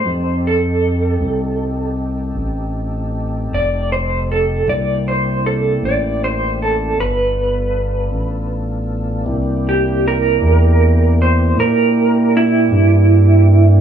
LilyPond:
<<
  \new Staff \with { instrumentName = "Clean electric guitar" } { \time 12/8 \key c \mixolydian \tempo 4. = 52 c''8 a'2 r2 d''8 c''8 a'8 | d''8 c''8 a'8 d''8 c''8 a'8 b'2 r4 | r8 g'8 bes'4. c''8 bes'4 e'2 | }
  \new Staff \with { instrumentName = "Tonewheel organ" } { \time 12/8 \key c \mixolydian <c' ees' g' a'>1. | <bes d' e' g'>2. <b d' f' a'>2. | <bes d' e' g'>1. | }
  \new Staff \with { instrumentName = "Analog synth bass" } { \clef bass \time 12/8 \key c \mixolydian f,4. c,4. a,,4. f,,4. | c,4. a,,4. g,,4. a,,4. | c,4. e,4. bes,4. g,4. | }
>>